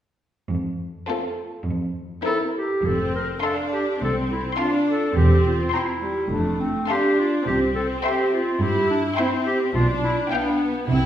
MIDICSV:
0, 0, Header, 1, 7, 480
1, 0, Start_track
1, 0, Key_signature, -1, "major"
1, 0, Tempo, 583658
1, 410, Time_signature, 4, 2, 24, 8
1, 3767, Tempo, 573614
1, 9187, End_track
2, 0, Start_track
2, 0, Title_t, "Violin section"
2, 0, Program_c, 0, 48
2, 897, Note_on_c, 0, 69, 35
2, 1244, Note_off_c, 0, 69, 0
2, 1854, Note_on_c, 0, 70, 44
2, 2218, Note_off_c, 0, 70, 0
2, 2810, Note_on_c, 0, 84, 31
2, 3167, Note_off_c, 0, 84, 0
2, 3769, Note_on_c, 0, 84, 34
2, 4125, Note_off_c, 0, 84, 0
2, 4730, Note_on_c, 0, 84, 34
2, 5090, Note_off_c, 0, 84, 0
2, 5712, Note_on_c, 0, 84, 37
2, 6063, Note_off_c, 0, 84, 0
2, 6673, Note_on_c, 0, 84, 37
2, 7024, Note_off_c, 0, 84, 0
2, 7614, Note_on_c, 0, 84, 39
2, 7970, Note_off_c, 0, 84, 0
2, 8572, Note_on_c, 0, 79, 39
2, 8927, Note_off_c, 0, 79, 0
2, 9187, End_track
3, 0, Start_track
3, 0, Title_t, "Violin section"
3, 0, Program_c, 1, 48
3, 896, Note_on_c, 1, 65, 33
3, 1243, Note_off_c, 1, 65, 0
3, 1855, Note_on_c, 1, 64, 45
3, 2218, Note_off_c, 1, 64, 0
3, 2823, Note_on_c, 1, 77, 35
3, 2824, Note_on_c, 1, 81, 33
3, 3174, Note_off_c, 1, 77, 0
3, 3174, Note_off_c, 1, 81, 0
3, 3774, Note_on_c, 1, 77, 33
3, 3779, Note_on_c, 1, 81, 31
3, 4128, Note_off_c, 1, 77, 0
3, 4131, Note_off_c, 1, 81, 0
3, 4743, Note_on_c, 1, 82, 33
3, 4745, Note_on_c, 1, 79, 34
3, 5096, Note_off_c, 1, 82, 0
3, 5097, Note_off_c, 1, 79, 0
3, 5702, Note_on_c, 1, 77, 34
3, 5703, Note_on_c, 1, 81, 36
3, 6057, Note_off_c, 1, 77, 0
3, 6058, Note_off_c, 1, 81, 0
3, 6663, Note_on_c, 1, 79, 37
3, 6669, Note_on_c, 1, 76, 37
3, 7018, Note_off_c, 1, 79, 0
3, 7022, Note_off_c, 1, 76, 0
3, 7610, Note_on_c, 1, 79, 40
3, 7611, Note_on_c, 1, 76, 38
3, 7968, Note_off_c, 1, 76, 0
3, 7968, Note_off_c, 1, 79, 0
3, 8568, Note_on_c, 1, 77, 43
3, 8568, Note_on_c, 1, 79, 42
3, 8925, Note_off_c, 1, 77, 0
3, 8925, Note_off_c, 1, 79, 0
3, 9187, End_track
4, 0, Start_track
4, 0, Title_t, "Clarinet"
4, 0, Program_c, 2, 71
4, 1852, Note_on_c, 2, 69, 68
4, 1962, Note_off_c, 2, 69, 0
4, 2099, Note_on_c, 2, 67, 49
4, 2347, Note_on_c, 2, 69, 47
4, 2360, Note_off_c, 2, 67, 0
4, 2582, Note_off_c, 2, 69, 0
4, 2592, Note_on_c, 2, 70, 46
4, 2696, Note_off_c, 2, 70, 0
4, 2819, Note_on_c, 2, 69, 49
4, 2925, Note_off_c, 2, 69, 0
4, 3066, Note_on_c, 2, 67, 43
4, 3170, Note_off_c, 2, 67, 0
4, 3316, Note_on_c, 2, 69, 47
4, 3418, Note_off_c, 2, 69, 0
4, 3546, Note_on_c, 2, 64, 42
4, 3649, Note_off_c, 2, 64, 0
4, 3772, Note_on_c, 2, 65, 40
4, 3879, Note_off_c, 2, 65, 0
4, 4016, Note_on_c, 2, 69, 49
4, 4255, Note_on_c, 2, 67, 49
4, 4268, Note_off_c, 2, 69, 0
4, 4492, Note_off_c, 2, 67, 0
4, 4499, Note_on_c, 2, 65, 45
4, 4740, Note_on_c, 2, 64, 48
4, 4753, Note_off_c, 2, 65, 0
4, 5206, Note_off_c, 2, 64, 0
4, 5211, Note_on_c, 2, 62, 44
4, 5460, Note_on_c, 2, 60, 44
4, 5473, Note_off_c, 2, 62, 0
4, 5700, Note_off_c, 2, 60, 0
4, 5707, Note_on_c, 2, 67, 55
4, 5952, Note_on_c, 2, 65, 44
4, 5965, Note_off_c, 2, 67, 0
4, 6177, Note_off_c, 2, 65, 0
4, 6182, Note_on_c, 2, 67, 47
4, 6289, Note_off_c, 2, 67, 0
4, 6418, Note_on_c, 2, 69, 49
4, 6526, Note_off_c, 2, 69, 0
4, 6672, Note_on_c, 2, 67, 50
4, 6901, Note_off_c, 2, 67, 0
4, 6907, Note_on_c, 2, 65, 48
4, 7149, Note_on_c, 2, 67, 56
4, 7161, Note_off_c, 2, 65, 0
4, 7376, Note_off_c, 2, 67, 0
4, 7381, Note_on_c, 2, 62, 47
4, 7487, Note_off_c, 2, 62, 0
4, 7615, Note_on_c, 2, 64, 45
4, 7722, Note_off_c, 2, 64, 0
4, 7848, Note_on_c, 2, 67, 52
4, 7957, Note_off_c, 2, 67, 0
4, 8086, Note_on_c, 2, 65, 50
4, 8195, Note_off_c, 2, 65, 0
4, 8332, Note_on_c, 2, 64, 52
4, 8439, Note_off_c, 2, 64, 0
4, 8564, Note_on_c, 2, 62, 51
4, 8871, Note_off_c, 2, 62, 0
4, 9055, Note_on_c, 2, 60, 51
4, 9187, Note_off_c, 2, 60, 0
4, 9187, End_track
5, 0, Start_track
5, 0, Title_t, "Viola section"
5, 0, Program_c, 3, 48
5, 899, Note_on_c, 3, 60, 36
5, 1245, Note_off_c, 3, 60, 0
5, 1859, Note_on_c, 3, 60, 41
5, 2220, Note_off_c, 3, 60, 0
5, 2347, Note_on_c, 3, 60, 38
5, 2787, Note_off_c, 3, 60, 0
5, 2823, Note_on_c, 3, 62, 39
5, 3286, Note_off_c, 3, 62, 0
5, 3299, Note_on_c, 3, 60, 36
5, 3771, Note_off_c, 3, 60, 0
5, 3779, Note_on_c, 3, 62, 38
5, 4244, Note_off_c, 3, 62, 0
5, 4249, Note_on_c, 3, 60, 39
5, 4722, Note_off_c, 3, 60, 0
5, 4735, Note_on_c, 3, 60, 36
5, 4802, Note_off_c, 3, 60, 0
5, 4971, Note_on_c, 3, 55, 35
5, 5208, Note_off_c, 3, 55, 0
5, 5211, Note_on_c, 3, 57, 39
5, 5687, Note_off_c, 3, 57, 0
5, 5702, Note_on_c, 3, 62, 39
5, 6170, Note_off_c, 3, 62, 0
5, 6178, Note_on_c, 3, 60, 36
5, 7138, Note_off_c, 3, 60, 0
5, 7143, Note_on_c, 3, 64, 44
5, 7608, Note_off_c, 3, 64, 0
5, 7623, Note_on_c, 3, 60, 42
5, 8090, Note_on_c, 3, 62, 47
5, 8097, Note_off_c, 3, 60, 0
5, 8559, Note_off_c, 3, 62, 0
5, 8569, Note_on_c, 3, 59, 49
5, 9033, Note_on_c, 3, 64, 52
5, 9039, Note_off_c, 3, 59, 0
5, 9187, Note_off_c, 3, 64, 0
5, 9187, End_track
6, 0, Start_track
6, 0, Title_t, "Cello section"
6, 0, Program_c, 4, 48
6, 422, Note_on_c, 4, 41, 42
6, 795, Note_off_c, 4, 41, 0
6, 1370, Note_on_c, 4, 41, 48
6, 1748, Note_off_c, 4, 41, 0
6, 2334, Note_on_c, 4, 41, 42
6, 2713, Note_off_c, 4, 41, 0
6, 3292, Note_on_c, 4, 36, 42
6, 3668, Note_off_c, 4, 36, 0
6, 4250, Note_on_c, 4, 40, 43
6, 4630, Note_off_c, 4, 40, 0
6, 5221, Note_on_c, 4, 41, 43
6, 5601, Note_off_c, 4, 41, 0
6, 6181, Note_on_c, 4, 48, 45
6, 6558, Note_off_c, 4, 48, 0
6, 7138, Note_on_c, 4, 43, 48
6, 7515, Note_off_c, 4, 43, 0
6, 8094, Note_on_c, 4, 47, 50
6, 8470, Note_off_c, 4, 47, 0
6, 9053, Note_on_c, 4, 48, 55
6, 9187, Note_off_c, 4, 48, 0
6, 9187, End_track
7, 0, Start_track
7, 0, Title_t, "Double bass section"
7, 0, Program_c, 5, 48
7, 2340, Note_on_c, 5, 29, 42
7, 2716, Note_off_c, 5, 29, 0
7, 4258, Note_on_c, 5, 28, 42
7, 4635, Note_off_c, 5, 28, 0
7, 5214, Note_on_c, 5, 29, 38
7, 5597, Note_off_c, 5, 29, 0
7, 6183, Note_on_c, 5, 36, 43
7, 6559, Note_off_c, 5, 36, 0
7, 8092, Note_on_c, 5, 35, 49
7, 8470, Note_off_c, 5, 35, 0
7, 9048, Note_on_c, 5, 36, 48
7, 9187, Note_off_c, 5, 36, 0
7, 9187, End_track
0, 0, End_of_file